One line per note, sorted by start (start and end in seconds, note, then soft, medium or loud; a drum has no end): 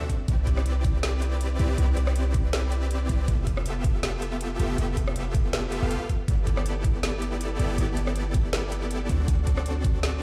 0.09 kick medium
0.09 closed hi-hat medium
0.28 1.58 C2 loud
0.28 1.57 C4 medium
0.28 1.57 E4 medium
0.28 1.58 G4 medium
0.28 1.57 B4 medium
0.28 1.58 D5 loud
0.28 kick loud
0.28 closed hi-hat medium
0.47 kick medium
0.47 closed hi-hat medium
0.57 cross-stick medium
0.66 closed hi-hat medium
0.84 kick loud
0.84 closed hi-hat medium
1.03 snare loud
1.03 closed hi-hat medium
1.22 closed hi-hat medium
1.41 closed hi-hat medium
1.59 1.77 C2 loud
1.59 1.76 C4 medium
1.59 1.76 E4 medium
1.59 1.76 G4 medium
1.59 1.76 B4 medium
1.59 1.76 D5 loud
1.59 closed hi-hat medium
1.78 3.08 C2 loud
1.78 3.08 C4 medium
1.78 3.08 E4 medium
1.78 3.08 G4 medium
1.78 3.08 B4 medium
1.78 3.08 D5 medium
1.78 closed hi-hat medium
1.97 closed hi-hat medium
2.07 cross-stick medium
2.16 closed hi-hat medium
2.34 kick loud
2.34 closed hi-hat medium
2.53 snare loud
2.53 closed hi-hat medium
2.72 closed hi-hat medium
2.91 closed hi-hat medium
3.09 3.27 C2 loud
3.09 3.26 C4 medium
3.09 3.26 E4 medium
3.09 3.26 G4 medium
3.09 3.26 B4 medium
3.09 3.26 D5 loud
3.09 kick medium
3.09 closed hi-hat medium
3.28 4.58 F1 loud
3.28 4.57 B3 medium
3.28 4.57 F4 medium
3.28 4.57 G4 medium
3.28 4.57 A4 medium
3.28 4.57 E5 loud
3.28 kick loud
3.28 closed hi-hat medium
3.47 kick medium
3.47 closed hi-hat medium
3.57 cross-stick medium
3.66 closed hi-hat medium
3.84 kick loud
3.84 closed hi-hat medium
4.03 snare loud
4.03 closed hi-hat medium
4.22 closed hi-hat medium
4.41 closed hi-hat medium
4.59 4.77 F1 loud
4.59 4.76 B3 medium
4.59 4.76 F4 medium
4.59 4.76 G4 medium
4.59 4.76 A4 medium
4.59 4.76 E5 medium
4.59 closed hi-hat medium
4.78 5.80 F1 loud
4.78 5.80 B3 medium
4.78 5.80 F4 medium
4.78 5.80 G4 medium
4.78 5.80 A4 medium
4.78 5.80 E5 medium
4.78 closed hi-hat medium
4.97 kick medium
4.97 closed hi-hat medium
5.08 cross-stick medium
5.16 closed hi-hat medium
5.34 kick loud
5.34 closed hi-hat medium
5.53 snare loud
5.53 closed hi-hat medium
5.72 closed hi-hat medium
5.82 5.97 F1 loud
5.82 5.99 B3 medium
5.82 5.99 F4 medium
5.82 5.99 G4 medium
5.82 5.99 A4 medium
5.82 5.99 F5 loud
5.91 closed hi-hat medium
6.09 kick medium
6.09 closed hi-hat medium
6.28 7.58 G1 medium
6.28 7.58 B3 medium
6.28 7.57 E4 medium
6.28 7.57 G4 medium
6.28 7.58 A4 medium
6.28 7.57 D5 loud
6.28 kick loud
6.28 closed hi-hat medium
6.47 kick medium
6.47 closed hi-hat medium
6.57 cross-stick medium
6.66 closed hi-hat medium
6.84 kick loud
6.84 closed hi-hat medium
7.03 snare loud
7.03 closed hi-hat medium
7.22 closed hi-hat medium
7.41 closed hi-hat medium
7.59 7.77 G1 loud
7.59 7.76 B3 medium
7.59 7.76 E4 medium
7.59 7.76 G4 medium
7.59 7.76 A4 medium
7.59 7.76 D5 loud
7.59 closed hi-hat medium
7.78 9.08 G1 loud
7.78 9.07 B3 medium
7.78 9.08 E4 medium
7.78 9.08 G4 medium
7.78 9.07 A4 medium
7.78 9.08 D5 loud
7.78 closed hi-hat medium
7.97 closed hi-hat medium
8.07 cross-stick medium
8.16 closed hi-hat medium
8.34 kick loud
8.34 closed hi-hat medium
8.53 snare loud
8.53 closed hi-hat medium
8.72 closed hi-hat medium
8.91 closed hi-hat medium
9.09 9.27 D2 loud
9.09 9.26 C4 medium
9.09 9.26 D4 medium
9.09 9.26 F#4 medium
9.09 9.26 A4 medium
9.09 9.26 D5 loud
9.09 kick medium
9.09 closed hi-hat medium
9.28 10.23 D2 loud
9.28 10.23 C4 medium
9.28 10.23 D4 medium
9.28 10.23 F#4 medium
9.28 10.23 A4 medium
9.28 10.23 D5 loud
9.28 kick loud
9.28 closed hi-hat medium
9.47 kick medium
9.47 closed hi-hat medium
9.57 cross-stick medium
9.66 closed hi-hat medium
9.84 kick loud
9.84 closed hi-hat medium
10.03 snare loud
10.03 closed hi-hat medium